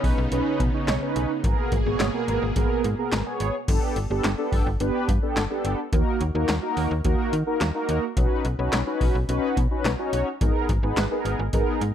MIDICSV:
0, 0, Header, 1, 5, 480
1, 0, Start_track
1, 0, Tempo, 560748
1, 1233, Time_signature, 4, 2, 24, 8
1, 10227, End_track
2, 0, Start_track
2, 0, Title_t, "Analog polysynth"
2, 0, Program_c, 0, 90
2, 0, Note_on_c, 0, 61, 90
2, 0, Note_on_c, 0, 63, 80
2, 0, Note_on_c, 0, 71, 97
2, 164, Note_off_c, 0, 61, 0
2, 164, Note_off_c, 0, 63, 0
2, 164, Note_off_c, 0, 71, 0
2, 273, Note_on_c, 0, 61, 93
2, 274, Note_on_c, 0, 63, 82
2, 274, Note_on_c, 0, 71, 101
2, 524, Note_off_c, 0, 61, 0
2, 525, Note_off_c, 0, 63, 0
2, 525, Note_off_c, 0, 71, 0
2, 633, Note_on_c, 0, 63, 80
2, 634, Note_on_c, 0, 61, 85
2, 634, Note_on_c, 0, 73, 98
2, 801, Note_off_c, 0, 61, 0
2, 801, Note_off_c, 0, 63, 0
2, 801, Note_off_c, 0, 73, 0
2, 872, Note_on_c, 0, 71, 99
2, 873, Note_on_c, 0, 61, 88
2, 873, Note_on_c, 0, 63, 83
2, 1124, Note_off_c, 0, 61, 0
2, 1124, Note_off_c, 0, 63, 0
2, 1124, Note_off_c, 0, 71, 0
2, 1233, Note_on_c, 0, 59, 84
2, 1233, Note_on_c, 0, 68, 79
2, 1233, Note_on_c, 0, 70, 93
2, 1484, Note_off_c, 0, 59, 0
2, 1484, Note_off_c, 0, 68, 0
2, 1484, Note_off_c, 0, 70, 0
2, 1592, Note_on_c, 0, 68, 82
2, 1593, Note_on_c, 0, 73, 97
2, 1594, Note_on_c, 0, 59, 89
2, 1760, Note_off_c, 0, 68, 0
2, 1761, Note_off_c, 0, 59, 0
2, 1761, Note_off_c, 0, 73, 0
2, 1833, Note_on_c, 0, 59, 86
2, 1833, Note_on_c, 0, 68, 77
2, 1833, Note_on_c, 0, 70, 96
2, 2084, Note_off_c, 0, 59, 0
2, 2084, Note_off_c, 0, 68, 0
2, 2084, Note_off_c, 0, 70, 0
2, 2192, Note_on_c, 0, 59, 91
2, 2192, Note_on_c, 0, 68, 82
2, 2192, Note_on_c, 0, 70, 105
2, 2444, Note_off_c, 0, 59, 0
2, 2444, Note_off_c, 0, 68, 0
2, 2444, Note_off_c, 0, 70, 0
2, 2554, Note_on_c, 0, 68, 77
2, 2554, Note_on_c, 0, 70, 97
2, 2555, Note_on_c, 0, 59, 90
2, 2721, Note_off_c, 0, 59, 0
2, 2721, Note_off_c, 0, 68, 0
2, 2721, Note_off_c, 0, 70, 0
2, 2793, Note_on_c, 0, 68, 80
2, 2794, Note_on_c, 0, 59, 85
2, 2794, Note_on_c, 0, 73, 100
2, 3044, Note_off_c, 0, 68, 0
2, 3045, Note_off_c, 0, 59, 0
2, 3045, Note_off_c, 0, 73, 0
2, 3152, Note_on_c, 0, 67, 80
2, 3153, Note_on_c, 0, 59, 86
2, 3153, Note_on_c, 0, 62, 76
2, 3154, Note_on_c, 0, 69, 98
2, 3404, Note_off_c, 0, 59, 0
2, 3404, Note_off_c, 0, 62, 0
2, 3404, Note_off_c, 0, 67, 0
2, 3405, Note_off_c, 0, 69, 0
2, 3514, Note_on_c, 0, 59, 87
2, 3514, Note_on_c, 0, 62, 82
2, 3514, Note_on_c, 0, 67, 83
2, 3514, Note_on_c, 0, 69, 102
2, 3681, Note_off_c, 0, 59, 0
2, 3681, Note_off_c, 0, 62, 0
2, 3681, Note_off_c, 0, 67, 0
2, 3681, Note_off_c, 0, 69, 0
2, 3751, Note_on_c, 0, 59, 88
2, 3751, Note_on_c, 0, 62, 80
2, 3751, Note_on_c, 0, 67, 78
2, 3751, Note_on_c, 0, 69, 99
2, 4003, Note_off_c, 0, 59, 0
2, 4003, Note_off_c, 0, 62, 0
2, 4003, Note_off_c, 0, 67, 0
2, 4003, Note_off_c, 0, 69, 0
2, 4111, Note_on_c, 0, 59, 91
2, 4111, Note_on_c, 0, 67, 87
2, 4112, Note_on_c, 0, 62, 84
2, 4112, Note_on_c, 0, 71, 103
2, 4363, Note_off_c, 0, 59, 0
2, 4363, Note_off_c, 0, 67, 0
2, 4364, Note_off_c, 0, 62, 0
2, 4364, Note_off_c, 0, 71, 0
2, 4471, Note_on_c, 0, 59, 86
2, 4471, Note_on_c, 0, 62, 83
2, 4471, Note_on_c, 0, 67, 82
2, 4471, Note_on_c, 0, 69, 93
2, 4639, Note_off_c, 0, 67, 0
2, 4640, Note_off_c, 0, 59, 0
2, 4640, Note_off_c, 0, 62, 0
2, 4640, Note_off_c, 0, 69, 0
2, 4711, Note_on_c, 0, 62, 83
2, 4711, Note_on_c, 0, 67, 81
2, 4711, Note_on_c, 0, 69, 95
2, 4712, Note_on_c, 0, 59, 89
2, 4963, Note_off_c, 0, 62, 0
2, 4963, Note_off_c, 0, 67, 0
2, 4963, Note_off_c, 0, 69, 0
2, 4964, Note_off_c, 0, 59, 0
2, 5072, Note_on_c, 0, 58, 87
2, 5072, Note_on_c, 0, 66, 76
2, 5072, Note_on_c, 0, 70, 94
2, 5073, Note_on_c, 0, 63, 76
2, 5324, Note_off_c, 0, 58, 0
2, 5324, Note_off_c, 0, 63, 0
2, 5324, Note_off_c, 0, 66, 0
2, 5324, Note_off_c, 0, 70, 0
2, 5430, Note_on_c, 0, 63, 83
2, 5431, Note_on_c, 0, 58, 91
2, 5431, Note_on_c, 0, 66, 82
2, 5431, Note_on_c, 0, 70, 99
2, 5599, Note_off_c, 0, 58, 0
2, 5599, Note_off_c, 0, 63, 0
2, 5599, Note_off_c, 0, 70, 0
2, 5600, Note_off_c, 0, 66, 0
2, 5670, Note_on_c, 0, 70, 101
2, 5671, Note_on_c, 0, 58, 88
2, 5671, Note_on_c, 0, 63, 81
2, 5671, Note_on_c, 0, 66, 81
2, 5923, Note_off_c, 0, 58, 0
2, 5923, Note_off_c, 0, 63, 0
2, 5923, Note_off_c, 0, 66, 0
2, 5923, Note_off_c, 0, 70, 0
2, 6032, Note_on_c, 0, 58, 91
2, 6032, Note_on_c, 0, 66, 85
2, 6033, Note_on_c, 0, 63, 82
2, 6033, Note_on_c, 0, 70, 103
2, 6284, Note_off_c, 0, 58, 0
2, 6284, Note_off_c, 0, 63, 0
2, 6284, Note_off_c, 0, 66, 0
2, 6284, Note_off_c, 0, 70, 0
2, 6391, Note_on_c, 0, 63, 77
2, 6392, Note_on_c, 0, 58, 86
2, 6392, Note_on_c, 0, 66, 79
2, 6392, Note_on_c, 0, 70, 100
2, 6559, Note_off_c, 0, 63, 0
2, 6560, Note_off_c, 0, 58, 0
2, 6560, Note_off_c, 0, 66, 0
2, 6560, Note_off_c, 0, 70, 0
2, 6632, Note_on_c, 0, 58, 88
2, 6632, Note_on_c, 0, 63, 82
2, 6632, Note_on_c, 0, 66, 83
2, 6632, Note_on_c, 0, 70, 97
2, 6884, Note_off_c, 0, 58, 0
2, 6884, Note_off_c, 0, 63, 0
2, 6884, Note_off_c, 0, 66, 0
2, 6884, Note_off_c, 0, 70, 0
2, 6990, Note_on_c, 0, 63, 79
2, 6991, Note_on_c, 0, 61, 88
2, 6991, Note_on_c, 0, 66, 80
2, 6991, Note_on_c, 0, 71, 93
2, 7243, Note_off_c, 0, 61, 0
2, 7243, Note_off_c, 0, 63, 0
2, 7243, Note_off_c, 0, 66, 0
2, 7243, Note_off_c, 0, 71, 0
2, 7351, Note_on_c, 0, 61, 87
2, 7351, Note_on_c, 0, 63, 82
2, 7351, Note_on_c, 0, 66, 83
2, 7351, Note_on_c, 0, 71, 98
2, 7519, Note_off_c, 0, 61, 0
2, 7519, Note_off_c, 0, 63, 0
2, 7519, Note_off_c, 0, 66, 0
2, 7519, Note_off_c, 0, 71, 0
2, 7589, Note_on_c, 0, 61, 87
2, 7590, Note_on_c, 0, 63, 78
2, 7590, Note_on_c, 0, 71, 94
2, 7591, Note_on_c, 0, 66, 81
2, 7842, Note_off_c, 0, 61, 0
2, 7843, Note_off_c, 0, 63, 0
2, 7843, Note_off_c, 0, 66, 0
2, 7843, Note_off_c, 0, 71, 0
2, 7951, Note_on_c, 0, 61, 95
2, 7951, Note_on_c, 0, 66, 83
2, 7951, Note_on_c, 0, 71, 105
2, 7952, Note_on_c, 0, 63, 87
2, 8203, Note_off_c, 0, 61, 0
2, 8203, Note_off_c, 0, 66, 0
2, 8203, Note_off_c, 0, 71, 0
2, 8204, Note_off_c, 0, 63, 0
2, 8312, Note_on_c, 0, 63, 81
2, 8312, Note_on_c, 0, 66, 82
2, 8313, Note_on_c, 0, 61, 89
2, 8313, Note_on_c, 0, 71, 97
2, 8480, Note_off_c, 0, 61, 0
2, 8480, Note_off_c, 0, 63, 0
2, 8480, Note_off_c, 0, 66, 0
2, 8480, Note_off_c, 0, 71, 0
2, 8552, Note_on_c, 0, 63, 84
2, 8553, Note_on_c, 0, 61, 89
2, 8553, Note_on_c, 0, 66, 81
2, 8553, Note_on_c, 0, 73, 95
2, 8803, Note_off_c, 0, 63, 0
2, 8804, Note_off_c, 0, 61, 0
2, 8804, Note_off_c, 0, 66, 0
2, 8804, Note_off_c, 0, 73, 0
2, 8913, Note_on_c, 0, 59, 85
2, 8913, Note_on_c, 0, 68, 77
2, 8913, Note_on_c, 0, 70, 96
2, 8914, Note_on_c, 0, 63, 77
2, 9164, Note_off_c, 0, 59, 0
2, 9164, Note_off_c, 0, 68, 0
2, 9164, Note_off_c, 0, 70, 0
2, 9165, Note_off_c, 0, 63, 0
2, 9273, Note_on_c, 0, 59, 91
2, 9273, Note_on_c, 0, 63, 81
2, 9273, Note_on_c, 0, 68, 80
2, 9273, Note_on_c, 0, 71, 100
2, 9440, Note_off_c, 0, 59, 0
2, 9440, Note_off_c, 0, 63, 0
2, 9440, Note_off_c, 0, 68, 0
2, 9440, Note_off_c, 0, 71, 0
2, 9511, Note_on_c, 0, 63, 81
2, 9511, Note_on_c, 0, 68, 81
2, 9511, Note_on_c, 0, 70, 98
2, 9512, Note_on_c, 0, 59, 88
2, 9763, Note_off_c, 0, 63, 0
2, 9763, Note_off_c, 0, 68, 0
2, 9763, Note_off_c, 0, 70, 0
2, 9764, Note_off_c, 0, 59, 0
2, 9874, Note_on_c, 0, 63, 84
2, 9874, Note_on_c, 0, 70, 102
2, 9875, Note_on_c, 0, 59, 94
2, 9875, Note_on_c, 0, 68, 84
2, 10125, Note_off_c, 0, 59, 0
2, 10125, Note_off_c, 0, 63, 0
2, 10125, Note_off_c, 0, 68, 0
2, 10125, Note_off_c, 0, 70, 0
2, 10227, End_track
3, 0, Start_track
3, 0, Title_t, "String machine"
3, 0, Program_c, 1, 50
3, 0, Note_on_c, 1, 49, 88
3, 0, Note_on_c, 1, 59, 79
3, 0, Note_on_c, 1, 63, 95
3, 1213, Note_off_c, 1, 49, 0
3, 1213, Note_off_c, 1, 59, 0
3, 1213, Note_off_c, 1, 63, 0
3, 1232, Note_on_c, 1, 58, 79
3, 1233, Note_on_c, 1, 68, 99
3, 1234, Note_on_c, 1, 47, 85
3, 3133, Note_off_c, 1, 58, 0
3, 3134, Note_off_c, 1, 47, 0
3, 3134, Note_off_c, 1, 68, 0
3, 10227, End_track
4, 0, Start_track
4, 0, Title_t, "FM bass"
4, 0, Program_c, 2, 39
4, 32, Note_on_c, 2, 35, 89
4, 123, Note_off_c, 2, 35, 0
4, 153, Note_on_c, 2, 35, 103
4, 244, Note_off_c, 2, 35, 0
4, 273, Note_on_c, 2, 35, 98
4, 364, Note_off_c, 2, 35, 0
4, 512, Note_on_c, 2, 47, 97
4, 603, Note_off_c, 2, 47, 0
4, 753, Note_on_c, 2, 35, 102
4, 844, Note_off_c, 2, 35, 0
4, 993, Note_on_c, 2, 35, 101
4, 1084, Note_off_c, 2, 35, 0
4, 1232, Note_on_c, 2, 32, 111
4, 1323, Note_off_c, 2, 32, 0
4, 1473, Note_on_c, 2, 32, 110
4, 1564, Note_off_c, 2, 32, 0
4, 1594, Note_on_c, 2, 32, 98
4, 1684, Note_off_c, 2, 32, 0
4, 1713, Note_on_c, 2, 32, 107
4, 1804, Note_off_c, 2, 32, 0
4, 1952, Note_on_c, 2, 32, 106
4, 2043, Note_off_c, 2, 32, 0
4, 2074, Note_on_c, 2, 32, 102
4, 2164, Note_off_c, 2, 32, 0
4, 2193, Note_on_c, 2, 32, 106
4, 2284, Note_off_c, 2, 32, 0
4, 2434, Note_on_c, 2, 44, 109
4, 2525, Note_off_c, 2, 44, 0
4, 2674, Note_on_c, 2, 32, 107
4, 2765, Note_off_c, 2, 32, 0
4, 2914, Note_on_c, 2, 32, 110
4, 3005, Note_off_c, 2, 32, 0
4, 3152, Note_on_c, 2, 31, 122
4, 3243, Note_off_c, 2, 31, 0
4, 3393, Note_on_c, 2, 31, 102
4, 3484, Note_off_c, 2, 31, 0
4, 3513, Note_on_c, 2, 31, 101
4, 3604, Note_off_c, 2, 31, 0
4, 3632, Note_on_c, 2, 31, 101
4, 3723, Note_off_c, 2, 31, 0
4, 3872, Note_on_c, 2, 31, 94
4, 3963, Note_off_c, 2, 31, 0
4, 3992, Note_on_c, 2, 31, 100
4, 4083, Note_off_c, 2, 31, 0
4, 4113, Note_on_c, 2, 31, 101
4, 4204, Note_off_c, 2, 31, 0
4, 4353, Note_on_c, 2, 43, 103
4, 4444, Note_off_c, 2, 43, 0
4, 4593, Note_on_c, 2, 31, 95
4, 4684, Note_off_c, 2, 31, 0
4, 4834, Note_on_c, 2, 31, 107
4, 4924, Note_off_c, 2, 31, 0
4, 5072, Note_on_c, 2, 39, 119
4, 5163, Note_off_c, 2, 39, 0
4, 5313, Note_on_c, 2, 39, 101
4, 5404, Note_off_c, 2, 39, 0
4, 5435, Note_on_c, 2, 39, 102
4, 5525, Note_off_c, 2, 39, 0
4, 5555, Note_on_c, 2, 39, 97
4, 5645, Note_off_c, 2, 39, 0
4, 5794, Note_on_c, 2, 39, 108
4, 5884, Note_off_c, 2, 39, 0
4, 5914, Note_on_c, 2, 39, 102
4, 6004, Note_off_c, 2, 39, 0
4, 6032, Note_on_c, 2, 39, 107
4, 6123, Note_off_c, 2, 39, 0
4, 6273, Note_on_c, 2, 51, 108
4, 6364, Note_off_c, 2, 51, 0
4, 6513, Note_on_c, 2, 39, 107
4, 6604, Note_off_c, 2, 39, 0
4, 6753, Note_on_c, 2, 39, 113
4, 6844, Note_off_c, 2, 39, 0
4, 6991, Note_on_c, 2, 35, 116
4, 7083, Note_off_c, 2, 35, 0
4, 7233, Note_on_c, 2, 35, 105
4, 7324, Note_off_c, 2, 35, 0
4, 7352, Note_on_c, 2, 35, 98
4, 7443, Note_off_c, 2, 35, 0
4, 7471, Note_on_c, 2, 35, 110
4, 7562, Note_off_c, 2, 35, 0
4, 7712, Note_on_c, 2, 35, 95
4, 7803, Note_off_c, 2, 35, 0
4, 7832, Note_on_c, 2, 35, 100
4, 7923, Note_off_c, 2, 35, 0
4, 7951, Note_on_c, 2, 35, 100
4, 8043, Note_off_c, 2, 35, 0
4, 8191, Note_on_c, 2, 47, 98
4, 8282, Note_off_c, 2, 47, 0
4, 8430, Note_on_c, 2, 35, 105
4, 8522, Note_off_c, 2, 35, 0
4, 8671, Note_on_c, 2, 35, 98
4, 8762, Note_off_c, 2, 35, 0
4, 8912, Note_on_c, 2, 32, 113
4, 9003, Note_off_c, 2, 32, 0
4, 9153, Note_on_c, 2, 32, 110
4, 9244, Note_off_c, 2, 32, 0
4, 9270, Note_on_c, 2, 32, 98
4, 9362, Note_off_c, 2, 32, 0
4, 9390, Note_on_c, 2, 32, 111
4, 9482, Note_off_c, 2, 32, 0
4, 9631, Note_on_c, 2, 32, 104
4, 9722, Note_off_c, 2, 32, 0
4, 9752, Note_on_c, 2, 32, 105
4, 9843, Note_off_c, 2, 32, 0
4, 9872, Note_on_c, 2, 32, 105
4, 9963, Note_off_c, 2, 32, 0
4, 10112, Note_on_c, 2, 44, 107
4, 10203, Note_off_c, 2, 44, 0
4, 10227, End_track
5, 0, Start_track
5, 0, Title_t, "Drums"
5, 32, Note_on_c, 9, 36, 97
5, 35, Note_on_c, 9, 46, 48
5, 118, Note_off_c, 9, 36, 0
5, 121, Note_off_c, 9, 46, 0
5, 272, Note_on_c, 9, 42, 86
5, 357, Note_off_c, 9, 42, 0
5, 513, Note_on_c, 9, 36, 102
5, 515, Note_on_c, 9, 42, 75
5, 598, Note_off_c, 9, 36, 0
5, 601, Note_off_c, 9, 42, 0
5, 754, Note_on_c, 9, 38, 117
5, 754, Note_on_c, 9, 39, 95
5, 755, Note_on_c, 9, 42, 77
5, 840, Note_off_c, 9, 38, 0
5, 840, Note_off_c, 9, 39, 0
5, 841, Note_off_c, 9, 42, 0
5, 993, Note_on_c, 9, 42, 89
5, 1078, Note_off_c, 9, 42, 0
5, 1232, Note_on_c, 9, 36, 116
5, 1233, Note_on_c, 9, 42, 91
5, 1318, Note_off_c, 9, 36, 0
5, 1319, Note_off_c, 9, 42, 0
5, 1471, Note_on_c, 9, 42, 69
5, 1473, Note_on_c, 9, 36, 90
5, 1557, Note_off_c, 9, 42, 0
5, 1559, Note_off_c, 9, 36, 0
5, 1710, Note_on_c, 9, 42, 76
5, 1712, Note_on_c, 9, 38, 123
5, 1712, Note_on_c, 9, 39, 98
5, 1796, Note_off_c, 9, 42, 0
5, 1797, Note_off_c, 9, 38, 0
5, 1797, Note_off_c, 9, 39, 0
5, 1954, Note_on_c, 9, 42, 69
5, 2039, Note_off_c, 9, 42, 0
5, 2191, Note_on_c, 9, 42, 83
5, 2193, Note_on_c, 9, 36, 101
5, 2277, Note_off_c, 9, 42, 0
5, 2279, Note_off_c, 9, 36, 0
5, 2435, Note_on_c, 9, 42, 76
5, 2520, Note_off_c, 9, 42, 0
5, 2674, Note_on_c, 9, 38, 117
5, 2674, Note_on_c, 9, 39, 98
5, 2675, Note_on_c, 9, 42, 76
5, 2759, Note_off_c, 9, 38, 0
5, 2759, Note_off_c, 9, 39, 0
5, 2760, Note_off_c, 9, 42, 0
5, 2911, Note_on_c, 9, 42, 88
5, 2997, Note_off_c, 9, 42, 0
5, 3152, Note_on_c, 9, 36, 112
5, 3152, Note_on_c, 9, 42, 92
5, 3152, Note_on_c, 9, 49, 103
5, 3237, Note_off_c, 9, 36, 0
5, 3238, Note_off_c, 9, 42, 0
5, 3238, Note_off_c, 9, 49, 0
5, 3392, Note_on_c, 9, 42, 70
5, 3477, Note_off_c, 9, 42, 0
5, 3630, Note_on_c, 9, 42, 76
5, 3632, Note_on_c, 9, 38, 125
5, 3632, Note_on_c, 9, 39, 104
5, 3716, Note_off_c, 9, 42, 0
5, 3718, Note_off_c, 9, 38, 0
5, 3718, Note_off_c, 9, 39, 0
5, 3872, Note_on_c, 9, 36, 97
5, 3874, Note_on_c, 9, 46, 50
5, 3957, Note_off_c, 9, 36, 0
5, 3960, Note_off_c, 9, 46, 0
5, 4110, Note_on_c, 9, 42, 86
5, 4196, Note_off_c, 9, 42, 0
5, 4352, Note_on_c, 9, 36, 102
5, 4354, Note_on_c, 9, 42, 77
5, 4438, Note_off_c, 9, 36, 0
5, 4440, Note_off_c, 9, 42, 0
5, 4595, Note_on_c, 9, 38, 120
5, 4595, Note_on_c, 9, 39, 101
5, 4595, Note_on_c, 9, 42, 78
5, 4680, Note_off_c, 9, 38, 0
5, 4680, Note_off_c, 9, 39, 0
5, 4681, Note_off_c, 9, 42, 0
5, 4833, Note_on_c, 9, 42, 90
5, 4919, Note_off_c, 9, 42, 0
5, 5073, Note_on_c, 9, 36, 118
5, 5073, Note_on_c, 9, 42, 91
5, 5158, Note_off_c, 9, 36, 0
5, 5158, Note_off_c, 9, 42, 0
5, 5312, Note_on_c, 9, 42, 67
5, 5398, Note_off_c, 9, 42, 0
5, 5551, Note_on_c, 9, 42, 75
5, 5553, Note_on_c, 9, 38, 125
5, 5553, Note_on_c, 9, 39, 100
5, 5637, Note_off_c, 9, 42, 0
5, 5639, Note_off_c, 9, 38, 0
5, 5639, Note_off_c, 9, 39, 0
5, 5794, Note_on_c, 9, 46, 49
5, 5880, Note_off_c, 9, 46, 0
5, 6031, Note_on_c, 9, 42, 85
5, 6033, Note_on_c, 9, 36, 105
5, 6116, Note_off_c, 9, 42, 0
5, 6118, Note_off_c, 9, 36, 0
5, 6275, Note_on_c, 9, 42, 77
5, 6360, Note_off_c, 9, 42, 0
5, 6514, Note_on_c, 9, 38, 122
5, 6514, Note_on_c, 9, 39, 96
5, 6515, Note_on_c, 9, 42, 75
5, 6599, Note_off_c, 9, 38, 0
5, 6599, Note_off_c, 9, 39, 0
5, 6600, Note_off_c, 9, 42, 0
5, 6752, Note_on_c, 9, 42, 94
5, 6837, Note_off_c, 9, 42, 0
5, 6992, Note_on_c, 9, 36, 118
5, 6992, Note_on_c, 9, 42, 91
5, 7077, Note_off_c, 9, 36, 0
5, 7077, Note_off_c, 9, 42, 0
5, 7231, Note_on_c, 9, 42, 71
5, 7316, Note_off_c, 9, 42, 0
5, 7469, Note_on_c, 9, 42, 76
5, 7471, Note_on_c, 9, 38, 127
5, 7471, Note_on_c, 9, 39, 105
5, 7554, Note_off_c, 9, 42, 0
5, 7556, Note_off_c, 9, 38, 0
5, 7556, Note_off_c, 9, 39, 0
5, 7711, Note_on_c, 9, 36, 98
5, 7713, Note_on_c, 9, 46, 49
5, 7797, Note_off_c, 9, 36, 0
5, 7799, Note_off_c, 9, 46, 0
5, 7951, Note_on_c, 9, 42, 85
5, 8037, Note_off_c, 9, 42, 0
5, 8192, Note_on_c, 9, 36, 102
5, 8194, Note_on_c, 9, 42, 76
5, 8277, Note_off_c, 9, 36, 0
5, 8280, Note_off_c, 9, 42, 0
5, 8434, Note_on_c, 9, 38, 115
5, 8434, Note_on_c, 9, 39, 98
5, 8434, Note_on_c, 9, 42, 77
5, 8519, Note_off_c, 9, 38, 0
5, 8519, Note_off_c, 9, 39, 0
5, 8520, Note_off_c, 9, 42, 0
5, 8672, Note_on_c, 9, 42, 92
5, 8757, Note_off_c, 9, 42, 0
5, 8912, Note_on_c, 9, 36, 118
5, 8912, Note_on_c, 9, 42, 90
5, 8997, Note_off_c, 9, 36, 0
5, 8998, Note_off_c, 9, 42, 0
5, 9151, Note_on_c, 9, 42, 71
5, 9153, Note_on_c, 9, 36, 87
5, 9237, Note_off_c, 9, 42, 0
5, 9238, Note_off_c, 9, 36, 0
5, 9390, Note_on_c, 9, 42, 77
5, 9392, Note_on_c, 9, 38, 122
5, 9392, Note_on_c, 9, 39, 101
5, 9475, Note_off_c, 9, 42, 0
5, 9477, Note_off_c, 9, 38, 0
5, 9477, Note_off_c, 9, 39, 0
5, 9634, Note_on_c, 9, 42, 68
5, 9720, Note_off_c, 9, 42, 0
5, 9870, Note_on_c, 9, 42, 84
5, 9872, Note_on_c, 9, 36, 100
5, 9956, Note_off_c, 9, 42, 0
5, 9958, Note_off_c, 9, 36, 0
5, 10113, Note_on_c, 9, 42, 74
5, 10199, Note_off_c, 9, 42, 0
5, 10227, End_track
0, 0, End_of_file